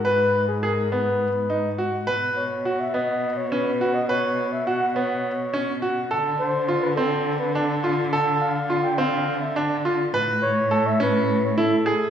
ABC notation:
X:1
M:7/8
L:1/16
Q:1/4=104
K:B
V:1 name="Flugelhorn"
B3 G A2 B6 z2 | z2 c3 e d3 c B3 d | c3 e f2 c6 z2 | z2 ^B3 =B =A3 B A2 z2 |
z2 =f3 =g f3 e =d2 z2 | z2 c3 e B3 c =A4 |]
V:2 name="Grand piano"
B4 G2 B,4 D2 F2 | B4 F2 B,4 C2 F2 | B4 F2 B,4 C2 F2 | =A4 =F2 ^B,4 =D2 F2 |
=A4 =F2 ^B,4 =D2 F2 | B4 =A2 C4 E2 G2 |]
V:3 name="Cello" clef=bass
G,,12- G,,2 | B,,12- B,,2- | B,,12- B,,2 | =D,12- D,2- |
=D,12- D,2 | =A,,12- A,,2 |]